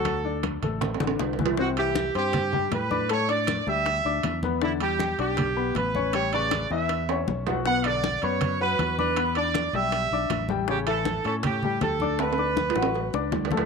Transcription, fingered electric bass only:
\new Staff \with { instrumentName = "Fingered electric bass" } { \clef bass \time 4/4 \key d \major \tempo 4 = 158 d,4. a,,4 a,,8 c,4~ | c,4. g,4. a,4~ | a,4. d,4 d,8 e,4~ | e,4. b,,4. a,,4~ |
a,,4. e,4. b,,4~ | b,,4. fis,4. e,4~ | e,4. b,,4 b,,8 a,,4~ | a,,4. a,4. d,4~ |
d,4. a,,4 cis,8 d,4 | }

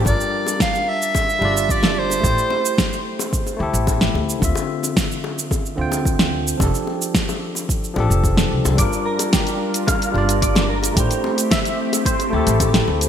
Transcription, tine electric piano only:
\new Staff \with { instrumentName = "Tine electric piano" } { \time 4/4 \key g \dorian \tempo 4 = 110 <g d' f' bes'>2~ <g d' f' bes'>8 <g d' f' d''>4. | <a e' g' c''>2~ <a e' g' c''>8 <a e' g' a'>4. | <d c' f' e''>2~ <d c' f' e''>8 <d c' f' g''>4. | <f d' g' a'>2~ <f d' g' a'>8 <f d' g' a'>4. |
<g d' f' bes'>2~ <g d' f' bes'>8 <g d' f' d''>4. | <a e' g' c''>2~ <a e' g' c''>8 <a e' g' a'>4. | }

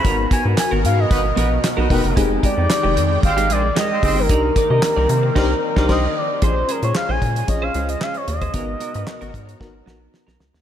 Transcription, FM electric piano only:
\new Staff \with { instrumentName = "FM electric piano" } { \time 4/4 \key aes \major \tempo 4 = 113 <ces' ees' ges' bes'>4. r2 <ces' ees' ges' bes'>16 r16 | <c' ees' g' aes'>4. r2 <c' ees' g' aes'>16 r16 | <d' ees' g' bes'>4. r8 <d' ees' g' c''>8 r16 <d' ees' g' c''>16 <d' ees' g' c''>8 r8 | <des' f' aes' c''>4. r8 <des' f' aes' des''>16 r16 <des' f' aes' c''>4 r8 |
<ces' ees' ges' bes'>4. r8 <ces' ees' ges' bes'>16 r16 <ces' ees' ges' bes'>4 r8 | }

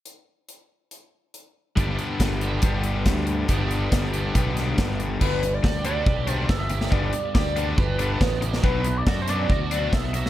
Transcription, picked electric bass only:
\new Staff \with { instrumentName = "Picked electric bass" } { \clef bass \time 4/4 \key g \major \tempo 4 = 140 r1 | g,,8 r8 g,,4 g,,4 d,4 | g,,4 g,,4 b,,4 g,,4 | g,,4 d,4 b,,4 g,,4 |
g,,8 r8 d,4 g,,4 a,,4 | b,,4 fis,4 d,4 b,,4 | }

